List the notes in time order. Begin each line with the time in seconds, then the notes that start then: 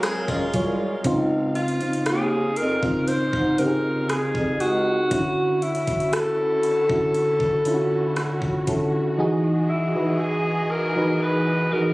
Already playing: F#3 G#3 F4 G#4 A#4 C#5 F5
0.03 C4 G#4, cross-stick, closed hi-hat
0.28 F#2 G#3 F4, kick
0.54 C2 F#3 F4 G#4 C#5, kick, closed hi-hat
1.04 C#2 C#3 C4 D#4 F4, kick, closed hi-hat
1.55 F4, closed hi-hat
1.68 closed hi-hat
1.81 C#3 C4 D#4 F4, closed hi-hat
1.93 closed hi-hat
2.06 D#2 G#4, cross-stick, closed hi-hat
2.56 F2 A#4, closed hi-hat
2.83 C#3 C4 D#4 F4, kick
3.08 G#2 C5, closed hi-hat
3.33 G#2, kick
3.58 C#3 C4 D#4 G4 A#4, closed hi-hat
3.67 G#4
4.09 G#4, cross-stick, closed hi-hat
4.35 F2, kick
4.60 C#2 F#4, closed hi-hat
5.11 D3 C#4 E4 F#4, kick, closed hi-hat
5.62 E4, closed hi-hat
5.75 closed hi-hat
5.87 kick, closed hi-hat
6.00 closed hi-hat
6.13 A4, cross-stick, closed hi-hat
6.63 closed hi-hat
6.89 D3 C#4 E4 F#4, kick
7.14 closed hi-hat
7.40 kick
7.65 D3 C#4 E4 F4, closed hi-hat
7.74 F#4
8.16 cross-stick, closed hi-hat
8.42 kick
8.67 D3 C#4 E4 A4, kick, closed hi-hat
9.18 E3 D#4 F#4 G#4 D#5
9.69 E4
9.94 E3 D#4 F#4 B4
10.20 G#4
10.71 A#4
10.96 E3 D#4 F#4 B4
11.22 B4
11.72 E3 D#4 F#4 G#4 A#4